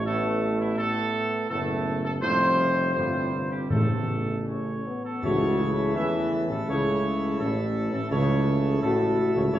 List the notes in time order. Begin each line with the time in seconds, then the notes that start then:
Already playing: A1 A2
0.04 A2 A3 B3 E4 A4
0.60 E4
0.77 A2 A3 B3 E4 A4
1.50 F#1 A2 A3 B3 E4 A4
2.04 A4
2.21 F1 A2 G3 C4 F4 C5
2.94 G1 A2 G3 C4 F4 C5
3.32 C3
3.51 G4
3.70 A1 A2 C#3 A3 B3 E4 A4
4.47 C#4 C#5
4.86 B3
5.05 A4
5.22 C#2 A2 C#3 E3 A3 E4 F#4 A4 C#5
5.60 E4
5.95 E2 E3 C#4 E5
6.50 A1 A2 A4
6.67 C#2 C#3 E4 C#5
7.40 A1 A2 C#4 A4
7.93 A1 A2 A4
8.10 C#2 C#3 E3 A3 E4 A4 C#5
8.82 A1 A2 F#4 A4
9.35 C#2 C#3 C#5
9.53 C#2 C#3 E4 C#5